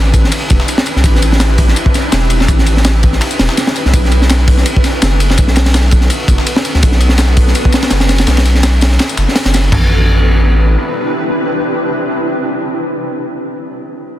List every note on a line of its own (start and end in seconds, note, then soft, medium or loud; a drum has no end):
0.00 0.31 A1 loud
0.14 kick medium
0.14 ride medium
0.14 tambourine medium
0.24 snare soft
0.32 ride loud
0.32 tambourine medium
0.50 0.59 E1 medium
0.50 kick loud
0.50 ride medium
0.50 tambourine medium
0.60 snare loud
0.68 ride medium
0.68 tambourine medium
0.78 snare loud
0.86 ride medium
0.86 tambourine medium
0.96 1.03 C2 medium
0.96 snare soft
1.04 1.75 A1 loud
1.04 kick loud
1.04 ride medium
1.04 tambourine loud
1.15 snare soft
1.22 ride medium
1.22 tambourine medium
1.32 snare medium
1.40 snare loud
1.40 ride medium
1.40 tambourine medium
1.58 kick loud
1.58 open hi-hat medium
1.58 ride medium
1.68 snare soft
1.68 snare medium
1.76 ride medium
1.76 tambourine medium
1.86 kick loud
1.94 snare medium
1.94 ride medium
1.94 tambourine medium
2.12 2.48 E1 medium
2.12 snare loud
2.12 ride medium
2.12 tambourine medium
2.30 ride medium
2.30 tambourine medium
2.40 snare medium
2.48 3.20 A1 loud
2.48 kick loud
2.48 ride medium
2.48 tambourine medium
2.59 snare medium
2.66 ride medium
2.66 tambourine medium
2.77 snare medium
2.85 snare loud
2.85 ride medium
2.85 tambourine medium
3.03 kick loud
3.03 ride medium
3.03 tambourine medium
3.13 snare soft
3.21 snare loud
3.21 ride loud
3.31 tambourine medium
3.39 3.48 E1 medium
3.39 snare loud
3.39 ride medium
3.49 snare loud
3.57 snare loud
3.57 ride medium
3.57 tambourine medium
3.67 snare loud
3.76 ride medium
3.76 tambourine medium
3.85 3.93 C2 medium
3.85 snare soft
3.93 4.65 B1 loud
3.93 kick loud
3.93 ride medium
3.93 tambourine medium
4.05 snare soft
4.12 ride medium
4.12 tambourine medium
4.22 snare medium
4.30 snare loud
4.30 ride loud
4.30 tambourine medium
4.48 kick loud
4.48 open hi-hat medium
4.48 ride medium
4.58 snare medium
4.58 snare soft
4.66 ride loud
4.66 tambourine medium
4.76 kick medium
4.84 snare medium
4.84 ride medium
4.84 tambourine medium
5.02 5.37 F#1 medium
5.02 snare loud
5.02 ride medium
5.02 tambourine medium
5.20 ride medium
5.20 tambourine medium
5.30 snare medium
5.37 6.09 B1 loud
5.37 kick loud
5.37 ride medium
5.37 tambourine medium
5.48 snare medium
5.56 snare loud
5.56 ride medium
5.56 tambourine medium
5.66 snare loud
5.66 ride medium
5.74 snare loud
5.74 ride medium
5.74 tambourine medium
5.91 kick loud
5.91 ride medium
5.91 tambourine medium
6.01 snare soft
6.10 ride medium
6.10 tambourine medium
6.28 6.37 F#1 medium
6.28 kick loud
6.28 ride medium
6.28 tambourine medium
6.38 snare loud
6.46 ride loud
6.46 tambourine medium
6.56 snare loud
6.65 ride medium
6.65 tambourine medium
6.74 6.82 D2 medium
6.74 snare soft
6.83 7.54 B1 loud
6.83 kick loud
6.83 ride loud
6.83 tambourine loud
6.92 snare soft
7.00 ride medium
7.00 tambourine medium
7.09 snare medium
7.18 snare loud
7.18 ride medium
7.18 tambourine medium
7.37 kick loud
7.37 open hi-hat medium
7.37 ride medium
7.47 snare soft
7.55 ride medium
7.55 tambourine medium
7.65 kick medium
7.72 snare loud
7.72 ride medium
7.72 tambourine medium
7.82 snare loud
7.82 ride medium
7.90 8.26 F#1 medium
7.90 snare loud
7.90 ride medium
7.90 tambourine medium
8.00 snare loud
8.00 ride medium
8.09 snare loud
8.09 ride medium
8.09 tambourine medium
8.18 snare loud
8.18 ride medium
8.27 8.98 B1 loud
8.27 snare loud
8.27 ride medium
8.27 tambourine medium
8.37 snare loud
8.37 ride medium
8.45 ride medium
8.45 tambourine medium
8.55 snare medium
8.63 snare loud
8.63 ride medium
8.63 tambourine medium
8.81 snare loud
8.81 ride medium
8.81 tambourine medium
8.92 snare soft
8.99 snare loud
8.99 ride medium
9.09 tambourine medium
9.17 9.26 F#1 loud
9.17 snare loud
9.17 ride medium
9.17 tambourine medium
9.28 snare medium
9.36 snare loud
9.36 open hi-hat medium
9.36 ride medium
9.45 9.70 F#1 loud
9.45 snare soft
9.45 snare loud
9.45 ride medium
9.54 snare loud
9.54 ride medium
9.54 tambourine medium
9.72 10.76 A1 loud
9.72 13.37 C4 loud
9.72 13.37 D4 medium
9.72 13.37 E4 medium
9.72 13.37 G4 medium
9.72 13.37 B4 loud
9.72 kick loud
9.72 floor tom loud
9.72 crash medium